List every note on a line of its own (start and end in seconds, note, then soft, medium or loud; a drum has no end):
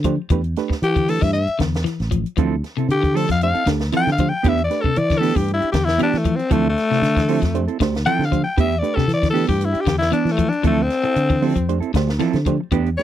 0.00 0.17 D3 medium
0.00 closed hi-hat medium
0.04 0.21 F3 medium
0.04 0.14 A3 medium
0.04 0.14 D4 medium
0.04 0.14 G4 medium
0.04 0.14 C5 medium
0.04 kick medium
0.30 0.54 E2 medium
0.30 0.46 E3 medium
0.30 0.40 A3 medium
0.30 0.40 D4 medium
0.30 0.40 G4 medium
0.30 0.40 B4 loud
0.30 kick loud
0.30 closed hi-hat medium
0.44 closed hi-hat soft
0.56 0.74 A3 medium
0.56 0.74 D4 medium
0.56 0.74 G4 medium
0.56 0.75 B4 loud
0.56 snare soft
0.56 closed hi-hat medium
0.70 muted clean electric guitar stroke medium
0.70 kick medium
0.70 snare soft
0.82 1.18 E3 medium
0.82 1.11 G4 loud
0.82 closed hi-hat medium
0.96 1.12 D3 medium
0.96 kick medium
0.96 closed hi-hat soft
1.08 1.41 A3 medium
1.08 1.42 D4 medium
1.08 1.42 G4 medium
1.08 1.25 A4 medium
1.08 1.42 B4 medium
1.08 open hi-hat medium
1.21 1.46 G2 medium
1.21 1.38 E3 medium
1.21 1.32 E5 medium
1.21 kick medium
1.33 1.59 E5 medium
1.33 closed hi-hat medium
1.47 muted fingered electric bass stroke soft
1.47 closed hi-hat soft
1.59 1.83 E2 medium
1.59 1.75 D3 medium
1.59 kick medium
1.59 snare medium
1.59 closed hi-hat soft
1.74 snare medium
1.74 closed hi-hat soft
1.84 2.01 E3 medium
1.84 snare soft
1.84 closed hi-hat medium
2.00 2.23 A1 medium
2.00 snare soft
2.00 closed hi-hat soft
2.11 2.27 F3 medium
2.11 kick medium
2.11 closed hi-hat soft
2.26 closed hi-hat soft
2.37 2.61 D2 medium
2.37 2.53 E3 medium
2.37 2.54 F3 medium
2.37 2.54 C4 medium
2.37 2.55 E4 medium
2.37 2.55 A4 loud
2.37 kick loud
2.37 closed hi-hat medium
2.64 muted clean electric guitar stroke soft
2.64 snare soft
2.64 closed hi-hat soft
2.77 2.93 C3 medium
2.77 2.90 C4 soft
2.77 2.89 E4 soft
2.77 2.89 A4 medium
2.77 closed hi-hat soft
2.89 3.25 D3 medium
2.89 3.18 G4 medium
2.89 muted clean electric guitar stroke soft
2.89 closed hi-hat medium
3.03 3.19 E3 medium
3.03 muted clean electric guitar stroke soft
3.03 kick medium
3.03 closed hi-hat soft
3.14 3.28 F3 medium
3.14 3.24 A3 medium
3.14 3.24 D4 medium
3.14 3.24 G4 medium
3.14 3.28 A4 medium
3.14 3.29 A4 medium
3.14 3.25 C5 medium
3.14 muted clean electric guitar stroke medium
3.14 open hi-hat medium
3.29 3.52 F2 medium
3.29 3.45 F3 medium
3.29 3.42 F5 medium
3.29 muted clean electric guitar stroke soft
3.29 kick medium
3.29 snare soft
3.29 closed hi-hat soft
3.41 3.51 A3 medium
3.41 3.51 D4 medium
3.41 3.51 G4 medium
3.41 3.51 C5 medium
3.41 3.67 F5 loud
3.41 closed hi-hat medium
3.54 3.65 C4 soft
3.54 3.66 E4 soft
3.54 3.66 A4 soft
3.54 muted fingered electric bass stroke soft
3.54 closed hi-hat soft
3.66 3.90 D2 medium
3.66 3.83 D3 medium
3.66 3.81 A3 medium
3.66 3.81 D4 medium
3.66 3.81 G4 medium
3.66 3.81 A4 medium
3.66 muted clean electric guitar stroke soft
3.66 kick medium
3.66 snare medium
3.66 closed hi-hat soft
3.79 muted clean electric guitar stroke soft
3.79 snare medium
3.79 closed hi-hat soft
3.92 4.09 E3 medium
3.92 4.09 F3 medium
3.92 4.09 C4 medium
3.92 4.09 E4 medium
3.92 4.09 A4 medium
3.92 snare soft
3.92 closed hi-hat medium
3.97 4.12 G5 loud
4.07 4.30 D3 medium
4.07 4.11 G4 medium
4.07 4.11 C5 medium
4.07 snare soft
4.07 closed hi-hat soft
4.12 4.31 F5 medium
4.18 4.35 F3 medium
4.18 4.28 A3 medium
4.18 4.28 D4 medium
4.18 4.28 G4 medium
4.18 4.28 C5 medium
4.18 muted clean electric guitar stroke soft
4.18 kick medium
4.18 closed hi-hat soft
4.29 4.50 G5 medium
4.29 muted clean electric guitar stroke soft
4.43 4.68 E2 loud
4.43 4.62 E3 medium
4.43 4.54 A3 medium
4.43 4.60 B3 medium
4.43 4.60 D4 medium
4.43 4.54 D4 medium
4.43 4.60 G4 medium
4.43 4.54 G4 medium
4.43 4.54 B4 medium
4.43 kick loud
4.43 closed hi-hat medium
4.49 4.63 E5 loud
4.58 closed hi-hat soft
4.64 4.83 D5 medium
4.70 4.88 A3 medium
4.70 4.88 D4 medium
4.70 4.88 G4 medium
4.70 4.88 B4 medium
4.70 muted clean electric guitar stroke soft
4.70 snare soft
4.70 closed hi-hat soft
4.82 5.01 C3 medium
4.82 4.95 D4 soft
4.82 4.99 A4 loud
4.82 muted clean electric guitar stroke medium
4.82 kick medium
4.96 5.32 E3 loud
4.96 5.20 D5 loud
4.96 muted clean electric guitar stroke soft
4.96 closed hi-hat medium
5.10 5.27 D3 medium
5.10 muted clean electric guitar stroke soft
5.10 kick medium
5.10 snare soft
5.10 closed hi-hat soft
5.18 5.35 B3 medium
5.18 5.35 D4 medium
5.18 5.35 G4 medium
5.18 5.38 A4 medium
5.22 5.55 A3 medium
5.22 5.55 D4 medium
5.22 5.55 G4 medium
5.22 5.56 B4 medium
5.22 open hi-hat medium
5.36 5.59 G2 medium
5.36 5.52 E3 medium
5.36 5.50 G4 medium
5.36 muted clean electric guitar stroke soft
5.36 kick medium
5.48 closed hi-hat medium
5.54 5.68 E4 medium
5.60 5.71 D4 soft
5.60 5.72 G4 soft
5.60 muted fingered electric bass stroke soft
5.60 closed hi-hat soft
5.72 5.97 E2 medium
5.72 5.90 D3 medium
5.72 5.87 G4 medium
5.72 muted clean electric guitar stroke soft
5.72 kick medium
5.72 snare medium
5.72 closed hi-hat medium
5.85 6.01 E4 loud
5.85 muted clean electric guitar stroke soft
5.85 snare medium
5.85 closed hi-hat soft
5.98 6.16 E3 medium
5.98 6.15 B3 medium
5.98 6.15 D4 medium
5.98 6.16 G4 medium
5.98 closed hi-hat medium
6.03 6.19 D4 loud
6.13 6.37 E3 medium
6.13 snare soft
6.13 closed hi-hat soft
6.18 6.37 A3 medium
6.25 6.41 F3 medium
6.25 muted clean electric guitar stroke soft
6.25 kick medium
6.25 closed hi-hat soft
6.36 6.54 C4 loud
6.36 muted clean electric guitar stroke medium
6.36 closed hi-hat soft
6.50 6.74 D2 loud
6.50 6.67 E3 medium
6.50 6.67 F3 medium
6.50 6.69 A3 medium
6.50 6.67 C4 medium
6.50 6.67 E4 medium
6.50 6.68 A4 medium
6.50 kick medium
6.50 closed hi-hat medium
6.69 7.69 A3 loud
6.78 muted clean electric guitar stroke soft
6.78 snare soft
6.78 closed hi-hat soft
6.91 7.07 C3 medium
6.91 7.02 C4 soft
6.91 7.02 E4 soft
6.91 muted clean electric guitar stroke medium
6.91 snare soft
6.91 closed hi-hat soft
7.02 7.38 D3 loud
7.02 muted clean electric guitar stroke soft
7.02 snare soft
7.02 closed hi-hat medium
7.17 7.33 E3 medium
7.17 muted clean electric guitar stroke soft
7.17 kick medium
7.17 snare soft
7.17 closed hi-hat soft
7.28 7.42 F3 medium
7.28 7.38 A3 medium
7.28 7.42 C4 medium
7.28 7.38 D4 medium
7.28 7.42 E4 medium
7.28 7.38 G4 medium
7.28 7.41 A4 medium
7.28 7.38 C5 medium
7.28 open hi-hat medium
7.42 7.66 F2 medium
7.42 7.58 F3 medium
7.42 muted clean electric guitar stroke soft
7.42 kick medium
7.42 snare soft
7.42 closed hi-hat soft
7.55 7.64 A3 medium
7.55 7.63 D4 medium
7.55 7.64 G4 medium
7.55 7.64 C5 medium
7.55 closed hi-hat medium
7.67 7.79 C4 soft
7.67 7.79 E4 medium
7.67 7.79 A4 medium
7.67 muted fingered electric bass stroke soft
7.67 closed hi-hat soft
7.79 8.04 D2 medium
7.79 7.96 D3 medium
7.79 7.94 A3 medium
7.79 7.94 D4 medium
7.79 7.94 G4 medium
7.79 7.94 C5 medium
7.79 muted clean electric guitar stroke soft
7.79 kick medium
7.79 snare medium
7.79 closed hi-hat medium
7.94 muted clean electric guitar stroke soft
7.94 snare medium
7.94 closed hi-hat soft
8.06 8.22 E3 medium
8.06 8.23 F3 medium
8.06 8.23 C4 medium
8.06 8.23 E4 medium
8.06 8.23 A4 medium
8.06 8.27 G5 loud
8.06 closed hi-hat medium
8.19 8.43 D3 medium
8.19 8.24 G4 medium
8.19 8.24 C5 medium
8.19 snare soft
8.19 closed hi-hat soft
8.25 8.41 F5 medium
8.30 8.48 F3 medium
8.30 8.41 A3 medium
8.30 8.41 D4 medium
8.30 8.41 G4 medium
8.30 8.41 C5 medium
8.30 muted clean electric guitar stroke soft
8.30 kick medium
8.30 closed hi-hat soft
8.44 8.59 G5 medium
8.44 muted clean electric guitar stroke soft
8.57 8.81 E2 medium
8.57 8.74 E3 medium
8.57 8.67 A3 medium
8.57 8.74 B3 medium
8.57 8.67 D4 medium
8.57 8.67 G4 medium
8.57 8.75 G4 medium
8.57 8.67 B4 medium
8.57 8.80 E5 loud
8.57 muted clean electric guitar stroke medium
8.57 kick loud
8.57 closed hi-hat medium
8.72 closed hi-hat soft
8.79 9.00 A3 medium
8.79 9.00 D4 medium
8.79 8.97 D5 medium
8.79 muted clean electric guitar stroke soft
8.83 9.01 G4 medium
8.83 9.01 B4 medium
8.83 closed hi-hat medium
8.95 9.14 C3 medium
8.95 9.08 D4 soft
8.95 9.08 G4 medium
8.95 9.11 A4 loud
8.95 kick medium
8.95 snare soft
9.08 9.44 E3 medium
9.08 muted clean electric guitar stroke soft
9.08 snare soft
9.08 closed hi-hat medium
9.13 9.29 D5 loud
9.22 9.39 D3 medium
9.22 muted clean electric guitar stroke soft
9.22 kick medium
9.22 snare soft
9.22 closed hi-hat soft
9.30 9.48 B3 medium
9.30 9.47 D4 medium
9.30 9.46 G4 medium
9.30 9.46 A4 medium
9.35 9.68 A3 medium
9.35 9.69 D4 medium
9.35 9.69 G4 medium
9.35 9.69 B4 medium
9.35 open hi-hat medium
9.47 9.73 G2 medium
9.47 9.65 E3 medium
9.47 9.67 G4 medium
9.47 muted clean electric guitar stroke soft
9.47 kick medium
9.61 closed hi-hat medium
9.65 9.83 E4 medium
9.73 9.87 D4 soft
9.73 9.85 G4 medium
9.73 muted fingered electric bass stroke soft
9.73 closed hi-hat soft
9.81 9.97 G4 medium
9.86 10.10 E2 medium
9.86 10.03 D3 medium
9.86 muted clean electric guitar stroke soft
9.86 kick medium
9.86 snare medium
9.86 closed hi-hat medium
9.98 10.12 E4 loud
9.98 muted clean electric guitar stroke soft
9.98 snare medium
9.98 closed hi-hat soft
10.11 10.28 E3 medium
10.11 10.29 B3 medium
10.11 10.29 D4 medium
10.11 10.33 D4 medium
10.11 closed hi-hat medium
10.25 10.49 E3 medium
10.25 snare soft
10.25 closed hi-hat soft
10.32 10.51 A3 medium
10.38 10.54 F3 medium
10.38 muted clean electric guitar stroke soft
10.38 kick medium
10.38 closed hi-hat medium
10.49 10.65 D4 medium
10.49 muted clean electric guitar stroke soft
10.49 closed hi-hat soft
10.63 10.88 D2 medium
10.63 10.80 E3 medium
10.63 10.81 F3 medium
10.63 10.84 A3 medium
10.63 10.81 C4 medium
10.63 10.81 E4 medium
10.63 10.81 A4 medium
10.63 kick medium
10.63 closed hi-hat medium
10.82 11.83 C4 loud
10.90 muted clean electric guitar stroke soft
10.90 snare soft
10.90 closed hi-hat soft
11.04 11.16 E4 medium
11.04 11.16 A4 medium
11.04 muted clean electric guitar stroke medium
11.04 closed hi-hat soft
11.16 11.52 D3 medium
11.16 muted clean electric guitar stroke soft
11.16 closed hi-hat medium
11.30 11.46 E3 medium
11.30 muted clean electric guitar stroke soft
11.30 kick medium
11.30 closed hi-hat soft
11.42 11.56 F3 medium
11.42 11.51 A3 medium
11.42 11.55 C4 medium
11.42 11.52 D4 medium
11.42 11.56 E4 medium
11.42 11.52 G4 medium
11.42 11.55 A4 medium
11.42 11.51 C5 medium
11.42 open hi-hat medium
11.56 11.80 F2 medium
11.56 11.72 F3 medium
11.56 muted clean electric guitar stroke medium
11.56 kick medium
11.56 closed hi-hat soft
11.69 11.78 A3 medium
11.69 11.78 D4 medium
11.69 11.78 G4 medium
11.69 11.78 C5 loud
11.69 closed hi-hat medium
11.80 11.93 C4 soft
11.80 11.93 E4 medium
11.80 11.93 A4 medium
11.80 muted fingered electric bass stroke soft
11.80 closed hi-hat soft
11.93 12.18 D2 medium
11.93 12.10 D3 medium
11.93 12.09 A3 medium
11.93 12.08 D4 medium
11.93 12.09 G4 medium
11.93 12.09 C5 medium
11.93 muted clean electric guitar stroke soft
11.93 kick medium
11.93 snare medium
11.93 closed hi-hat soft
12.08 muted clean electric guitar stroke medium
12.08 snare medium
12.08 closed hi-hat soft
12.19 12.36 E3 medium
12.19 12.36 F3 medium
12.19 12.36 C4 loud
12.19 12.36 E4 medium
12.19 12.37 A4 medium
12.19 snare soft
12.19 closed hi-hat medium
12.33 12.57 D3 medium
12.33 12.39 G4 medium
12.33 12.39 C5 loud
12.33 snare soft
12.33 closed hi-hat soft
12.45 12.62 F3 medium
12.45 12.56 A3 medium
12.45 12.56 D4 medium
12.45 12.56 G4 medium
12.45 12.56 C5 medium
12.45 muted clean electric guitar stroke soft
12.45 kick medium
12.45 closed hi-hat soft
12.60 muted clean electric guitar stroke soft
12.71 12.95 E2 medium
12.71 12.88 E3 medium
12.71 12.82 A3 medium
12.71 12.88 B3 medium
12.71 12.89 D4 medium
12.71 12.81 D4 medium
12.71 12.89 G4 loud
12.71 12.82 G4 medium
12.71 12.82 B4 loud
12.71 kick medium
12.71 closed hi-hat medium
12.86 closed hi-hat soft
12.97 13.03 A3 medium
12.97 13.03 D4 medium
12.97 13.03 G4 medium
12.97 13.03 B4 medium
12.97 13.03 D5 loud
12.97 muted clean electric guitar stroke soft
12.97 snare soft
12.97 closed hi-hat soft